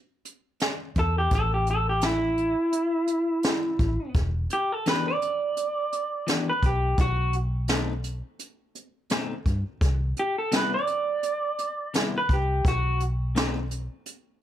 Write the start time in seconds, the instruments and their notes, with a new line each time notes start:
0.25 closed hi-hat
0.60 snare, closed hi-hat
0.95 fingered electric bass E2, clean electric guitar A4, kick, closed hi-hat
1.18 clean electric guitar G4
1.31 fingered electric bass A1, kick, closed hi-hat
1.35 clean electric guitar A4
1.54 clean electric guitar G4
1.67 closed hi-hat
1.71 clean electric guitar A4
1.89 clean electric guitar G4
2.01 clean electric guitar E4, snare, closed hi-hat
2.37 closed hi-hat
2.72 closed hi-hat
3.07 closed hi-hat
3.43 snare, closed hi-hat
3.79 fingered electric bass A1, kick, closed hi-hat
4.14 fingered electric bass E1, kick, closed hi-hat
4.50 clean electric guitar G4, closed hi-hat
4.72 clean electric guitar A4
4.86 clean electric guitar E3 B3 D4 G4 B4, snare, closed hi-hat
5.08 clean electric guitar D5
5.22 closed hi-hat
5.57 closed hi-hat
5.92 closed hi-hat
6.27 clean electric guitar E3 B3 D4 G4, snare, closed hi-hat
6.50 clean electric guitar B4
6.62 fingered electric bass B1, clean electric guitar G4, kick, closed hi-hat
6.98 fingered electric bass B1, clean electric guitar F#4, kick, closed hi-hat
7.33 closed hi-hat
7.68 clean electric guitar B2 A3 C4 D#4, snare, closed hi-hat
8.04 closed hi-hat
8.39 closed hi-hat
8.75 closed hi-hat
9.10 clean electric guitar B2 A3 C4 D#4, snare, closed hi-hat
9.46 fingered electric bass G2, kick, closed hi-hat
9.81 fingered electric bass C2, kick, closed hi-hat
10.16 clean electric guitar G4, closed hi-hat
10.38 clean electric guitar A4
10.52 clean electric guitar C3 G3 B3 E4, snare, closed hi-hat
10.56 clean electric guitar B4
10.74 clean electric guitar D5
10.87 closed hi-hat
11.23 closed hi-hat
11.59 closed hi-hat
11.94 clean electric guitar C3 G3 B3 E4, snare, closed hi-hat
12.18 clean electric guitar B4
12.29 fingered electric bass C2, kick, closed hi-hat
12.33 clean electric guitar G4
12.65 fingered electric bass B1, clean electric guitar F#4, kick, closed hi-hat
13.00 closed hi-hat
13.35 clean electric guitar B2 A3 C4 D#4, snare, closed hi-hat
13.71 closed hi-hat
14.06 closed hi-hat